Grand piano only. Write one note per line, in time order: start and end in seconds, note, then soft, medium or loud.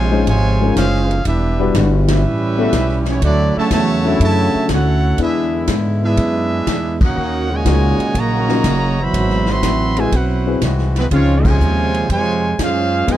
0.11 0.25 G#3 medium
0.11 0.25 C#4 medium
0.11 0.26 D#4 medium
0.11 0.26 F4 medium
0.11 0.26 C5 medium
0.61 0.75 G#3 medium
0.61 0.75 C#4 medium
0.61 0.75 D#4 medium
0.61 0.75 F4 medium
0.61 0.76 A#4 medium
1.59 2.21 G3 medium
1.59 2.21 D4 medium
1.59 2.21 E4 medium
1.59 2.21 F#4 medium
1.59 2.21 B4 loud
2.58 2.72 B3 medium
2.58 2.72 C#4 medium
2.58 2.72 E4 medium
2.58 2.72 G4 medium
2.58 2.72 A4 medium
4.04 4.66 D3 medium
4.04 4.66 C#4 medium
4.04 4.66 E4 medium
4.04 4.67 F#4 medium
4.04 4.67 A4 medium
5.19 6.58 B3 medium
5.19 6.57 D4 medium
5.19 6.58 E4 medium
5.19 6.58 G#4 medium
5.19 6.58 B4 medium
7.65 7.96 C#4 medium
7.65 7.96 D#4 medium
7.65 7.96 F4 medium
7.65 7.96 F#4 medium
7.65 7.97 A#4 medium
8.49 8.63 C#4 medium
8.49 8.63 D#4 medium
8.49 8.63 F4 medium
8.49 8.63 F#4 medium
8.49 8.63 A#4 medium
9.97 10.10 C4 medium
9.97 10.11 E4 medium
9.97 10.11 F#4 medium
9.97 10.11 G#4 medium
9.97 10.11 B4 medium
10.46 10.60 C4 medium
10.46 10.60 E4 medium
10.46 10.60 F#4 medium
10.46 10.60 G#4 medium
10.46 10.61 B4 medium
11.12 11.88 C#3 medium
11.12 11.88 D#4 soft
11.12 11.88 F4 medium
11.12 11.88 G#4 medium
13.08 13.17 B3 medium
13.08 13.17 D#4 medium
13.08 13.17 F4 medium
13.08 13.17 G#4 medium
13.08 13.17 B4 medium